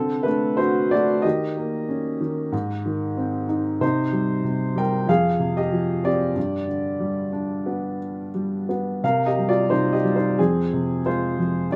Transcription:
0.00 0.58 D3 medium
0.00 0.23 C4 medium
0.00 0.25 A4 medium
0.23 0.91 A3 soft
0.23 0.57 D4 medium
0.23 0.58 B4 medium
0.57 1.23 D3 soft
0.57 0.90 F#4 medium
0.57 0.92 C5 medium
0.91 1.24 A3 soft
0.91 1.22 F#4 medium
0.91 1.25 D5 medium
1.22 2.19 D#3 medium
1.22 3.46 G4 medium
1.22 3.45 D#5 medium
1.57 2.50 A#3 soft
1.89 2.51 C#4 medium
2.21 2.52 D#3 medium
2.52 3.78 G#2 medium
2.86 3.79 D#3 soft
3.17 3.80 C4 soft
3.49 3.80 D#4 medium
3.81 4.43 C3 medium
3.81 4.73 D#4 medium
3.81 4.79 C5 medium
4.13 4.74 G3 soft
4.44 5.06 C3 medium
4.76 5.07 G3 medium
4.76 5.07 A#4 medium
4.76 5.07 G5 medium
5.08 6.32 F2 medium
5.08 5.53 G#4 medium
5.08 5.58 F5 medium
5.39 6.33 C3 soft
5.57 6.01 G4 medium
5.57 6.06 D#5 medium
5.72 6.34 F3 soft
6.04 6.35 C4 soft
6.04 6.65 G4 medium
6.04 6.64 D5 medium
6.35 8.99 G2 medium
6.67 7.96 D3 soft
7.00 8.30 G3 soft
7.32 8.65 D4 medium
7.66 8.68 B3 soft
8.35 9.01 G3 soft
8.69 9.02 B3 soft
9.04 9.70 C3 medium
9.04 9.26 A#4 medium
9.04 9.25 F5 medium
9.26 9.48 G4 medium
9.26 9.50 D#5 medium
9.38 10.03 G3 soft
9.49 9.70 F4 medium
9.49 9.72 D5 medium
9.70 10.37 C3 soft
9.70 9.92 D#4 medium
9.70 9.94 C5 medium
9.93 10.14 G4 medium
9.93 10.16 D#5 medium
10.05 10.38 G3 soft
10.15 10.37 D#4 medium
10.15 10.39 C5 medium
10.38 11.37 F2 medium
10.38 11.01 C4 medium
10.38 11.07 G#4 medium
10.73 11.68 C3 soft
11.06 11.69 G#3 soft
11.06 11.67 F4 medium
11.06 11.73 C5 medium
11.38 11.70 F2 soft
11.71 11.76 G2 medium
11.71 11.76 G4 medium
11.71 11.76 D5 medium

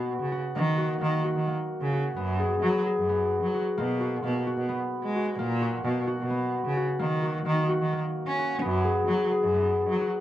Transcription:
0.00 0.13 B2 medium
0.00 0.62 B3 medium
0.00 0.32 F#4 medium
0.21 0.40 C#3 medium
0.32 0.78 F#4 medium
0.55 0.94 D#3 loud
0.55 1.01 A#3 medium
0.78 1.24 F#4 medium
1.01 1.20 D#3 loud
1.01 1.47 A#3 medium
1.24 1.93 F#4 medium
1.36 1.55 D#3 medium
1.47 2.22 A#3 medium
1.81 2.10 C#3 medium
1.94 3.54 F#4 medium
2.16 2.54 F#2 loud
2.16 2.63 B3 medium
2.39 2.86 G#4 medium
2.62 2.81 F#3 loud
2.62 3.08 B3 medium
2.86 5.13 G#4 medium
2.97 3.35 F#2 medium
3.09 3.84 B3 medium
3.43 3.62 F#3 medium
3.54 4.00 F#4 medium
3.78 4.16 B2 loud
3.78 4.23 A#3 medium
4.01 4.46 F#4 medium
4.23 4.43 B2 loud
4.23 4.75 A#3 medium
4.47 5.16 F#4 medium
4.57 4.77 B2 medium
4.69 5.45 B3 medium
5.03 5.32 G#3 medium
5.16 5.61 F#4 medium
5.38 5.77 A#2 loud
5.38 5.84 A#3 medium
5.61 6.07 F#4 medium
5.84 6.04 B2 loud
5.84 6.36 A#3 medium
6.07 6.77 F#4 medium
6.20 6.58 B2 medium
6.30 7.05 B3 medium
6.65 6.85 C#3 medium
6.77 7.22 F#4 medium
6.99 7.38 D#3 loud
6.99 7.46 A#3 medium
7.23 7.68 F#4 medium
7.46 7.65 D#3 loud
7.46 7.92 A#3 medium
7.69 8.38 F#4 medium
7.81 8.00 D#3 medium
7.92 8.67 A#3 medium
8.27 8.56 C#4 medium
8.39 10.01 F#4 medium
8.61 9.00 F#2 loud
8.61 9.08 B3 loud
8.85 9.31 G#4 medium
9.07 9.27 F#3 medium
9.07 9.54 B3 medium
9.31 10.21 G#4 medium
9.43 9.81 F#2 medium
9.54 10.21 B3 medium
9.89 10.08 F#3 medium
10.01 10.21 F#4 medium

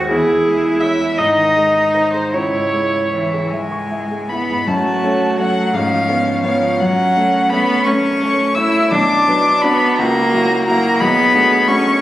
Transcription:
0.00 0.12 D#2 medium
0.00 0.12 D#3 medium
0.00 0.12 G#3 medium
0.00 0.10 F#4 medium
0.00 0.12 F#4 medium
0.00 0.10 G#4 medium
0.00 0.13 C5 medium
0.09 1.15 E2 medium
0.09 1.20 E4 medium
0.09 0.82 G#4 loud
0.09 0.82 G#4 medium
0.29 0.57 E3 medium
0.47 0.75 G#3 medium
0.64 0.93 E4 soft
0.80 1.11 C#5 medium
0.80 1.19 E5 medium
1.01 1.19 G#4 medium
1.18 2.30 G#2 medium
1.18 2.33 D#4 medium
1.18 2.11 D#5 medium
1.18 2.13 D#5 medium
1.37 1.67 D#3 medium
1.57 1.86 G#3 soft
1.76 2.06 D#4 soft
1.95 2.26 C5 soft
2.12 2.33 G#4 soft
2.12 2.34 C5 medium
2.12 2.35 C5 medium
2.32 4.64 C#2 medium
2.32 3.12 E4 medium
2.32 3.12 C#5 medium
2.32 3.52 C#5 medium
2.53 2.85 G#2 soft
2.73 3.05 G#3 soft
2.94 3.25 E4 soft
3.13 3.52 E3 medium
3.13 3.45 C#5 soft
3.13 3.52 E5 medium
3.33 3.64 G#4 soft
3.50 4.29 G#3 medium
3.50 3.83 E5 soft
3.50 4.31 G#5 medium
3.72 4.03 C#6 soft
3.92 4.22 E5 soft
4.11 4.42 G#4 soft
4.30 4.67 B3 medium
4.30 4.61 E4 soft
4.30 4.69 B5 medium
4.50 4.68 G#2 soft
4.67 5.02 F#2 medium
4.67 5.41 A3 medium
4.67 5.76 F#4 medium
4.67 5.38 A5 medium
5.03 5.35 A3 medium
5.03 5.36 C#4 medium
5.03 5.36 C#5 medium
5.39 5.77 F#3 medium
5.39 5.71 A3 medium
5.39 5.71 C#4 medium
5.39 5.71 C#5 medium
5.39 5.76 F#5 loud
5.73 6.08 G#2 medium
5.73 6.45 F3 medium
5.73 8.91 C#4 medium
5.73 6.43 F5 loud
6.09 6.40 B3 medium
6.09 6.41 C#4 medium
6.09 6.41 C#5 medium
6.44 6.81 F3 medium
6.44 6.76 B3 medium
6.44 6.77 C#4 medium
6.44 6.77 C#5 medium
6.44 6.82 F5 loud
6.80 7.15 F#2 medium
6.80 7.51 F#3 medium
6.80 7.51 F#5 loud
7.17 7.48 A3 medium
7.17 7.48 C#4 medium
7.17 7.48 C#5 medium
7.50 7.83 A3 medium
7.50 7.88 B3 loud
7.50 7.83 C#4 medium
7.50 7.84 C#5 medium
7.50 7.86 B5 loud
7.84 8.18 A3 medium
7.84 8.56 C#4 medium
7.84 8.18 C#4 medium
7.84 8.19 C#5 medium
7.84 8.56 C#6 loud
8.22 8.53 A3 medium
8.22 8.53 C#4 medium
8.22 8.54 C#5 medium
8.55 8.88 A3 medium
8.55 8.88 C#4 medium
8.55 8.94 E4 loud
8.55 8.88 C#5 medium
8.55 8.92 E6 loud
8.90 9.26 B1 medium
8.90 10.00 D4 medium
8.90 9.65 D4 medium
8.90 9.64 D6 loud
9.28 9.60 F#3 medium
9.28 9.60 D4 medium
9.28 9.60 B4 medium
9.62 9.95 F#3 medium
9.62 10.02 B3 loud
9.62 9.95 D4 medium
9.62 9.96 B4 medium
9.62 9.98 B5 loud
9.99 10.32 C#2 medium
9.99 10.68 A#3 loud
9.99 11.02 F#4 medium
9.99 10.66 A#5 loud
10.33 10.64 F#3 medium
10.33 10.64 E4 medium
10.33 10.65 F#4 medium
10.67 10.97 F#3 medium
10.67 11.03 A#3 loud
10.67 10.97 E4 medium
10.67 10.98 F#4 medium
10.67 11.02 A#5 loud
11.01 11.33 B1 medium
11.01 11.70 B3 loud
11.01 12.01 G#4 medium
11.01 11.69 B5 loud
11.34 11.64 A3 medium
11.34 11.65 D4 medium
11.34 11.65 F#4 medium
11.68 11.99 A3 medium
11.68 12.01 C#4 loud
11.68 11.99 D4 medium
11.68 11.99 F#4 medium
11.68 12.01 C#6 loud

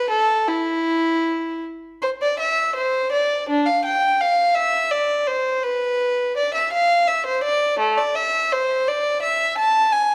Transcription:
0.00 0.10 B4 medium
0.09 0.47 A4 medium
0.48 1.63 E4 medium
2.02 2.09 C5 medium
2.22 2.39 D5 medium
2.39 2.75 E5 medium
2.76 3.12 C5 medium
3.12 3.48 D5 medium
3.49 3.66 D4 medium
3.66 3.84 F5 medium
3.84 4.19 G5 medium
4.20 4.56 F5 medium
4.55 4.92 E5 medium
4.91 5.28 D5 medium
5.27 5.64 C5 medium
5.62 6.36 B4 medium
6.37 6.55 D5 medium
6.54 6.72 E5 medium
6.73 7.08 F5 medium
7.07 7.26 E5 medium
7.26 7.44 C5 medium
7.44 7.79 D5 medium
7.79 7.97 A3 medium
7.97 8.16 D5 medium
8.15 8.52 E5 medium
8.52 8.88 C5 medium
8.88 9.23 D5 medium
9.22 9.57 E5 medium
9.58 9.93 A5 medium
9.92 10.15 G#5 medium

